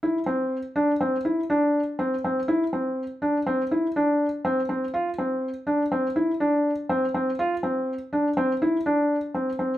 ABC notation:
X:1
M:5/4
L:1/8
Q:1/4=122
K:C
V:1 name="Felt piano"
E C2 D C E D2 C C | E C2 D C E D2 C C | F C2 D C E D2 C C | F C2 D C E D2 C C |]